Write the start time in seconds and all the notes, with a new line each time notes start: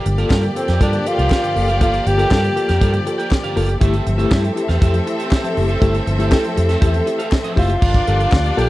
Already playing: F3 A#3 G4 D5
0.05 G1 G2 D3, muted clean electric guitar stroke, closed hi-hat
0.18 A#3 F4 G4 A4 A#4 F5, closed hi-hat
0.30 G2 F4 G4 A4 A#4 F5, kick, snare, clap
0.43 G2 D3, muted clean electric guitar stroke, closed hi-hat
0.56 C4 F4 A4, muted clean electric guitar stroke, closed hi-hat
0.68 F2 G4 A#4 G5, snare, closed hi-hat
0.81 G2 D4 F4 G4 A4 A#4 F5, kick, closed hi-hat
0.93 G2 D3, muted clean electric guitar stroke, closed hi-hat
1.05 F4 A4, muted clean electric guitar stroke, closed hi-hat
1.18 C2 G4 A#4 F5, closed hi-hat
1.30 F4 G4 A4 A#4 F5, kick, snare, clap
1.43 G2 D3, muted clean electric guitar stroke, closed hi-hat
1.55 F#1 A#3 F4 A4, muted clean electric guitar stroke, open hi-hat
1.68 G4 A#4 F5, closed hi-hat
1.80 G1 A#3 F4 G4 A4 A#4 F5, kick, closed hi-hat
1.94 closed hi-hat
2.06 G1 G2 D3 G4, muted clean electric guitar stroke, closed hi-hat
2.17 A#3 F4 G4 A4 A#4 F5, closed hi-hat
2.30 G2 F4 G4 A4 A#4 F5, kick, snare, clap
2.43 G2 D3, muted clean electric guitar stroke, closed hi-hat
2.56 F4 A4, muted clean electric guitar stroke, closed hi-hat
2.68 F2 G4 A#4 F5, snare, closed hi-hat
2.81 G2 F4 G4 A4 A#4 F5, kick, closed hi-hat
2.93 G2 D3, muted clean electric guitar stroke, closed hi-hat
3.06 F4 A4, muted clean electric guitar stroke, closed hi-hat
3.18 G4 A#4 G5, closed hi-hat
3.31 F4 A4, muted clean electric guitar stroke, kick, snare, clap
3.44 G2 D3 G4 A#4 F5, closed hi-hat
3.56 F#1 A#3 F4 G4 A4 A#4 F5, open hi-hat
3.69 muted clean electric guitar stroke, closed hi-hat
3.81 G1 E3 A3 C4 E4 G4 A4 E5, kick, closed hi-hat
3.94 closed hi-hat
4.06 G1 F3, muted clean electric guitar stroke, closed hi-hat
4.18 A3 E4 G4 A4 E5, closed hi-hat
4.31 G2 E4 G4 A4 E5, kick, snare, clap
4.44 F3, muted clean electric guitar stroke, closed hi-hat
4.56 E4 G4, muted clean electric guitar stroke, closed hi-hat
4.68 E2 G4 A4 F5, snare, closed hi-hat
4.81 F2 E4 G4 A4 E5, kick, closed hi-hat
4.94 F3, muted clean electric guitar stroke, closed hi-hat
5.06 E4 G4, muted clean electric guitar stroke, closed hi-hat
5.19 G4 A4 E5, closed hi-hat
5.31 E4 G4 A4 E5, kick, snare, clap
5.44 F3, muted clean electric guitar stroke, closed hi-hat
5.56 F#1 A3 E4 G4, muted clean electric guitar stroke, open hi-hat
5.69 G4 A4 E5, closed hi-hat
5.82 G1 A3 E4 G4 A4 E5, kick, closed hi-hat
5.94 closed hi-hat
6.06 G1 F3, muted clean electric guitar stroke, closed hi-hat
6.19 A3 E4 G4 A4 E5, closed hi-hat
6.31 E4 G4 A4 E5, kick, snare, clap
6.44 F3, muted clean electric guitar stroke, closed hi-hat
6.56 F2 E4 G4, muted clean electric guitar stroke, closed hi-hat
6.69 G4 A4 E5, snare, closed hi-hat
6.81 E2 E4 G4 A4 E5, kick, closed hi-hat
6.93 F3, muted clean electric guitar stroke, closed hi-hat
7.06 E4 G4, muted clean electric guitar stroke, closed hi-hat
7.19 G4 A4 F5, closed hi-hat
7.31 E4 G4, muted clean electric guitar stroke, kick, snare, clap
7.44 F3 G4 A4 E5, closed hi-hat
7.56 F#1 A3 E4 F4 G4 A4 E5, kick, open hi-hat
7.70 muted clean electric guitar stroke, closed hi-hat
7.81 G1 G2 D3 F3 A#3 D4 F4 G4 A#4 D5, kick, crash
7.94 kick, closed hi-hat
8.07 G1 F4 A4 A#4 D5, closed hi-hat
8.20 F4 A#4 D5, closed hi-hat
8.32 D2, muted clean electric guitar stroke, kick, snare, clap
8.44 F4 A#4 D5, closed hi-hat
8.57 A#1 A#3 F4 G4 A4 A#4 D5, closed hi-hat